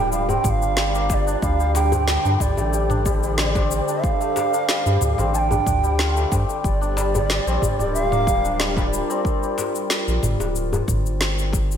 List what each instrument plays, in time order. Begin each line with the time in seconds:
Already playing: analog synth bass D1, santur G3 A#3 C4 D4, ambient pad G3 D4 F4 A#4 G5, singing bowl F4, ney G5
0.12 santur G3, ney F5, shaker
0.29 santur C4, ney G5, djembe bass, shaker
0.44 analog synth bass G1, santur G3, ney G5, kick, mid tom, shaker
0.49 ney F5
0.62 santur D4, shaker
0.77 santur G3, snare, shaker
0.95 santur A#3, shaker
1.10 santur G3, ney F5, kick, djembe slap, shaker
1.14 ney D5
1.27 santur D4, shaker
1.42 analog synth bass D2, ambient pad D3, santur G3, ney F5, kick, shaker
1.60 santur G3, shaker
1.75 santur G3, ney G5, djembe slap, shaker
1.92 santur C4, djembe bass, shaker
2.00 ambient pad A4
2.08 santur G3, snare, shaker
2.25 analog synth bass G2, santur D4, shaker
2.40 analog synth bass D2, santur G3, ney D5, kick, mid tom, djembe tone, shaker
2.53 ambient pad C5
2.57 analog synth bass A1, santur A3, djembe tone, shaker
2.73 santur G3, shaker
2.90 santur D4, mid tom, shaker
3.06 santur G3, kick, djembe tone, shaker
3.23 santur G3, shaker
3.38 santur G3, ney D5, snare, shaker
3.54 santur C4, kick, djembe slap, djembe tone, shaker
3.71 santur G3, shaker
3.88 santur D4, shaker
4.04 santur G3, ney F5, kick, shaker
4.21 santur A3, shaker
4.36 santur G3, djembe slap, shaker
4.54 santur D4, shaker
4.69 santur G3, snare, shaker
4.86 analog synth bass G2, santur G3, shaker
5.01 analog synth bass D2, santur G3, mid tom, djembe tone, shaker
5.18 analog synth bass A1, santur C4, djembe tone, shaker
5.34 santur G3, ney A5, shaker
5.38 ney G5
5.51 santur D4, djembe bass, shaker
5.67 analog synth bass D2, santur D4, kick, mid tom, shaker
5.83 santur G3, shaker
5.99 santur F4, snare, shaker
6.16 santur A3, shaker
6.32 analog synth bass G2, santur C4, kick, djembe slap, shaker
6.49 santur A3, shaker
6.64 analog synth bass G1, santur G3, ambient pad G3, ney D5, kick, shaker
6.81 santur D4, ambient pad F4, shaker
6.97 santur G3, djembe slap, shaker
7.03 ambient pad A#4
7.14 santur G3, djembe bass, shaker
7.30 santur G3, snare, shaker
7.47 analog synth bass A#1, santur C4, shaker
7.62 analog synth bass G1, santur G3, kick, mid tom, djembe tone, shaker
7.79 analog synth bass D1, santur D4, djembe tone, shaker
7.94 santur G3, ney F5, shaker
8.12 santur A#3, mid tom, shaker
8.27 santur G3, kick, djembe tone, shaker
8.44 santur D4, shaker
8.59 santur G3, ney D5, snare, shaker
8.67 ney F5
8.75 santur G3, ney D5, kick, djembe slap, djembe tone, shaker
8.93 santur G3, shaker
9.10 santur C4, shaker
9.25 kick, shaker
9.43 shaker
9.58 djembe slap, shaker
9.75 shaker
9.90 snare, shaker
10.07 analog synth bass A#1, shaker
10.23 analog synth bass G1, mid tom, djembe tone, shaker
10.39 analog synth bass D1, djembe tone, shaker
10.56 shaker
10.73 djembe bass, shaker
10.88 analog synth bass G1, kick, mid tom, shaker
11.06 shaker
11.21 snare, shaker
11.39 shaker
11.53 kick, djembe slap, shaker
11.71 shaker